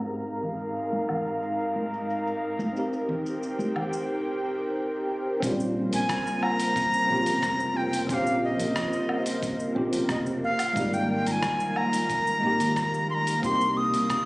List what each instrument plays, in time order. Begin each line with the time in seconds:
Already playing: tine electric piano G#2 C4 D#4 G4 G#4 A#4, analog synth pad G#3 D#4 A#4 F5 A#5
0.09 cabasa
0.26 cabasa
0.43 low conga
0.59 cabasa
0.76 cabasa
0.93 high conga, cabasa
1.09 low conga, low woodblock
1.27 cabasa
1.43 cabasa
1.60 cabasa
1.76 high conga
1.94 cabasa
2.10 cabasa
2.27 cabasa
2.59 high conga, cabasa
2.73 tine electric piano C4 D#4, analog synth pad G4 C5 G5, cabasa
2.77 tine electric piano G4 A#4
2.93 cabasa
3.09 low conga
3.26 cabasa
3.43 cabasa
3.59 high conga, cabasa
3.76 low conga, low woodblock
3.93 cabasa
5.40 fingered electric bass A#1, analog synth pad C#3 A#3 F4 A#4 C5, tine electric piano C4 C#4, kick, open hi-hat, cabasa
5.44 tine electric piano G3 F4
5.60 cabasa
5.93 fingered electric bass A#1, flute G#5, open hi-hat, cabasa
6.09 kick, cross-stick, open hi-hat, cabasa
6.27 cabasa
6.42 flute A#5, low woodblock
6.60 open hi-hat, cabasa
6.76 kick, open hi-hat, cabasa
6.94 cabasa
7.07 fingered electric bass A#1, tine electric piano C4 C#4
7.11 tine electric piano F4 G4
7.26 fingered electric bass F1, open hi-hat, cabasa
7.43 kick, cross-stick, open hi-hat, cabasa
7.60 cabasa
7.77 flute G5
7.93 open hi-hat, cabasa
8.07 fingered electric bass A#1, tine electric piano C4 C#4 F4, flute G5, kick, open hi-hat, cabasa
8.13 tine electric piano G4, flute F5
8.27 cabasa
8.44 flute D#5
8.60 fingered electric bass A#1, open hi-hat, cabasa
8.76 kick, cross-stick, open hi-hat, cabasa
8.93 cabasa
9.09 low woodblock
9.26 open hi-hat, cabasa
9.43 kick, open hi-hat, cabasa
9.60 cabasa
9.75 fingered electric bass A#1, tine electric piano C4 C#4 F4 G4
9.93 fingered electric bass F1, open hi-hat, cabasa
10.09 flute D#5, kick, cross-stick, open hi-hat, cabasa
10.26 cabasa
10.44 analog synth pad D#3 F3 F4, flute F5
10.59 open hi-hat, cabasa, low woodblock
10.73 fingered electric bass G#1, tine electric piano G#3 A#3, kick, open hi-hat, cabasa
10.77 tine electric piano G3 D#4
10.94 flute G5, cabasa
11.26 fingered electric bass G#1, flute A#5, open hi-hat, cabasa
11.31 flute G#5
11.43 kick, cross-stick, open hi-hat, cabasa
11.60 cabasa
11.76 flute A#5, low woodblock
11.93 open hi-hat, cabasa
12.10 kick, open hi-hat, cabasa
12.27 cabasa
12.40 fingered electric bass G#1, tine electric piano G#3 A#3
12.44 tine electric piano D#4 G4
12.60 fingered electric bass D#2, open hi-hat, cabasa
12.76 kick, cross-stick, open hi-hat, cabasa
12.94 cabasa
13.10 flute C6
13.14 flute A#5
13.27 open hi-hat, cabasa
13.40 fingered electric bass C2, analog synth pad C3 G3 D#4, tine electric piano A#3 C4, kick, open hi-hat, cabasa
13.44 tine electric piano D#4 G4, flute C6
13.61 cabasa
13.77 flute D#6
13.94 fingered electric bass C2, open hi-hat, cabasa
14.10 kick, cross-stick, open hi-hat, cabasa